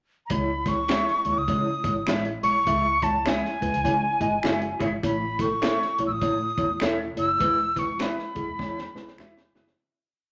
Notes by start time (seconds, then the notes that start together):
0.26 G#3 A#5, kick, closed hi-hat
0.30 C#2 E4 C#5 B5
0.66 G#3 E4 C#5 C#6, kick, snare, closed hi-hat
0.88 G#3 E4 G#4 C#5 E5, finger snap, snare, closed hi-hat
1.08 snare
1.25 D#2 G#3 E4 C#5, closed hi-hat
1.38 C#2 D#6
1.48 C#3 G#3 E4 C#5, kick, closed hi-hat
1.84 G#1 G#3 E4 C#5, kick, closed hi-hat
2.07 A1 G#3 E4 G#4 C#5 E5, finger snap, snare, closed hi-hat
2.25 closed hi-hat
2.43 B1 G#3 E4 C#5 C#6, closed hi-hat
2.67 C#2 G#3 E4 E5, kick, closed hi-hat
3.02 G#3 E4 C#5 A5, kick, closed hi-hat
3.25 G#3 E4 G#4 C#5 E5 G#5, finger snap, snare, closed hi-hat
3.45 snare
3.61 D#2 G#3 E4 B4, kick, closed hi-hat
3.74 C#2, closed hi-hat
3.84 C#3 G#3 E4 C#5, kick, closed hi-hat
4.20 G#1 G#3 E4 D#5, kick, closed hi-hat
4.43 F#1 G#3 E4 F#4 G#4 C#5 E5, finger snap, snare, closed hi-hat
4.62 closed hi-hat
4.80 G#1 G#3 E4 G#4 C#5 E5, kick, closed hi-hat
5.03 A1 A3 E4 C#5 B5, kick, closed hi-hat
5.39 A3 E4 A4 C#6, kick, snare, closed hi-hat
5.62 A3 E4 A4 C#5 E5, finger snap, snare, closed hi-hat
5.82 snare
5.98 B1 A3 E4 C#5, closed hi-hat
6.07 A1 E6
6.12 D#6
6.21 A2 A3 E4 C#5, kick, closed hi-hat
6.57 E2 A3 E4 C#5, kick, closed hi-hat
6.80 E1 A3 E4 A4 C#5 E5, finger snap, snare, closed hi-hat
7.16 F#1 A3 E4 C#5 E6, closed hi-hat
7.39 E1 G#3 E4 B4, kick, closed hi-hat
7.76 G#3 E4 B4 C#6, kick, snare, closed hi-hat
7.99 G#3 E4 G#4 B4 E5 B5, finger snap, snare, closed hi-hat
8.19 snare
8.35 F#1 G#3 E4 G#4, kick, closed hi-hat
8.48 E1
8.58 E2 G#3 E4 C#5, kick, snare
8.78 snare
8.94 B1 G#3 E4 B4, snare
9.08 snare
9.18 E1 G#3 E4 F#4 G#4 B4 E5, finger snap, snare
9.38 snare
9.55 F#1 G#3 E4 F#4 G#4 B4 E5, snare
9.67 snare